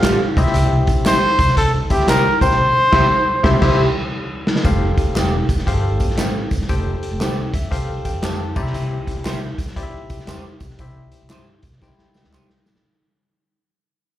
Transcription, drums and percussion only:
0.03 snare, clap, closed hi-hat, tambourine
0.37 kick, closed hi-hat, tambourine
0.46 snare
0.54 closed hi-hat, tambourine
0.87 kick, closed hi-hat, tambourine
1.06 snare, clap, closed hi-hat, tambourine
1.39 kick, closed hi-hat, tambourine
1.48 snare
1.57 kick, closed hi-hat
1.90 kick, closed hi-hat, tambourine
2.00 snare
2.08 snare, clap, closed hi-hat, tambourine
2.41 kick, closed hi-hat, tambourine
2.51 snare
2.92 kick, snare, crash
3.44 kick, snare
3.62 kick, snare, crash
4.47 snare
4.56 snare
4.65 kick, closed hi-hat, tambourine
4.97 kick, closed hi-hat, tambourine
5.16 snare, clap, closed hi-hat, tambourine
5.49 kick, closed hi-hat, tambourine
5.58 snare
5.67 kick, closed hi-hat, tambourine
6.00 kick, closed hi-hat, tambourine
6.10 snare
6.18 snare, clap, closed hi-hat, tambourine
6.51 kick, closed hi-hat, tambourine
6.61 snare
6.69 kick, closed hi-hat, tambourine
7.03 closed hi-hat
7.21 snare, clap, closed hi-hat, tambourine
7.54 kick, closed hi-hat, tambourine
7.72 kick, closed hi-hat, tambourine
8.05 kick, closed hi-hat, tambourine
8.23 snare, clap, closed hi-hat, tambourine
8.56 kick, tambourine, crash
8.66 snare
8.74 closed hi-hat, tambourine
9.07 kick, closed hi-hat, tambourine
9.25 snare, clap, closed hi-hat, tambourine
9.58 kick, closed hi-hat, tambourine
9.67 snare
9.76 kick, closed hi-hat, tambourine
10.10 kick, closed hi-hat, tambourine
10.19 snare
10.27 snare, clap, closed hi-hat, tambourine
10.60 kick, closed hi-hat, tambourine
10.70 snare
10.79 kick, closed hi-hat, tambourine
11.12 closed hi-hat, tambourine
11.30 snare, clap, closed hi-hat, tambourine
11.63 kick, closed hi-hat, tambourine
11.72 snare
11.82 kick, snare, tambourine
11.98 snare
12.14 snare, tambourine
12.24 snare
12.33 snare, clap, tambourine
12.50 snare
12.66 snare, tambourine
12.75 snare

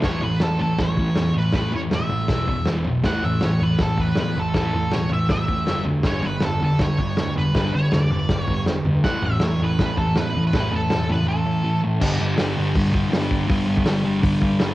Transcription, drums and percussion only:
0.02 kick, snare, floor tom
0.22 floor tom
0.40 snare, floor tom
0.59 floor tom
0.79 kick, snare, floor tom
0.97 kick, floor tom
1.16 snare, floor tom
1.34 floor tom
1.53 kick, snare, floor tom
1.72 floor tom
1.91 snare, floor tom
2.09 floor tom
2.28 kick, snare, floor tom
2.47 kick, floor tom
2.66 snare, floor tom
2.85 floor tom
3.04 kick, snare, floor tom
3.22 floor tom
3.41 snare, floor tom
3.60 floor tom
3.79 kick, snare, floor tom
3.97 kick, floor tom
4.16 snare, floor tom
4.36 floor tom
4.54 kick, snare, floor tom
4.73 floor tom
4.92 snare, floor tom
5.09 floor tom
5.29 kick, snare, floor tom
5.48 kick, floor tom
5.67 snare, floor tom
5.85 floor tom
6.03 kick, snare, floor tom
6.23 floor tom
6.40 snare, floor tom
6.60 floor tom
6.79 kick, snare, floor tom
6.98 kick, floor tom
7.17 snare, floor tom
7.36 floor tom
7.55 kick, snare, floor tom
7.74 floor tom
7.92 snare, floor tom
8.10 floor tom
8.29 kick, snare, floor tom
8.47 kick, floor tom
8.66 snare, floor tom
8.85 floor tom
9.04 kick, snare, floor tom
9.22 floor tom
9.40 snare, floor tom
9.60 floor tom
9.79 kick, snare, floor tom
9.97 kick, floor tom
10.16 snare, floor tom
10.35 floor tom
10.53 kick, snare, floor tom
10.72 floor tom
10.90 snare, floor tom
11.09 floor tom
12.01 kick, crash
12.38 snare, open hi-hat
12.76 kick, open hi-hat
12.94 kick
13.13 snare, open hi-hat
13.31 kick
13.50 kick, open hi-hat
13.78 kick
13.86 snare, open hi-hat
14.24 kick, open hi-hat
14.42 kick
14.60 snare, open hi-hat

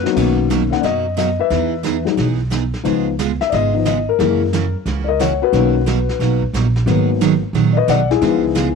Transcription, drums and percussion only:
0.06 snare
0.16 brush sweep, kick, snare, crash
0.50 snare, hi-hat pedal
0.73 snare
0.84 brush sweep, snare
1.18 snare, hi-hat pedal
1.51 brush sweep, snare
1.85 snare, hi-hat pedal
2.07 snare
2.18 brush sweep, snare
2.52 snare, hi-hat pedal
2.74 snare
2.85 brush sweep, snare
3.19 snare, hi-hat pedal
3.41 snare
3.53 brush sweep, snare
3.86 snare, hi-hat pedal
4.20 brush sweep, snare
4.53 snare, hi-hat pedal
4.87 brush sweep, snare
5.21 snare, hi-hat pedal
5.53 brush sweep, snare
5.87 snare, hi-hat pedal
6.09 snare
6.21 brush sweep, snare
6.42 kick
6.55 snare, hi-hat pedal
6.76 snare
6.87 brush sweep, snare
7.21 snare, hi-hat pedal
7.55 brush sweep, snare
7.89 snare, hi-hat pedal
8.11 snare
8.22 brush sweep, snare
8.56 snare, hi-hat pedal

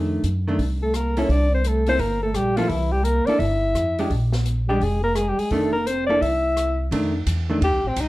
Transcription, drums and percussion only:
0.24 closed hi-hat
0.59 kick, open hi-hat
0.94 cross-stick, closed hi-hat
1.17 open hi-hat
1.29 kick, open hi-hat
1.64 closed hi-hat
1.87 open hi-hat
1.99 kick, open hi-hat
2.34 cross-stick, closed hi-hat
2.57 open hi-hat
2.69 kick, open hi-hat
3.05 closed hi-hat
3.27 open hi-hat
3.40 kick, open hi-hat
3.75 cross-stick, closed hi-hat
3.99 open hi-hat
4.10 kick, open hi-hat
4.32 snare
4.46 closed hi-hat
4.81 kick, open hi-hat
5.15 cross-stick, closed hi-hat
5.39 open hi-hat
5.51 kick, open hi-hat
5.87 closed hi-hat
6.22 kick, open hi-hat
6.57 cross-stick, closed hi-hat
6.92 kick, ride
7.27 kick, hi-hat pedal, ride
7.62 kick, ride
7.96 kick, hi-hat pedal, ride

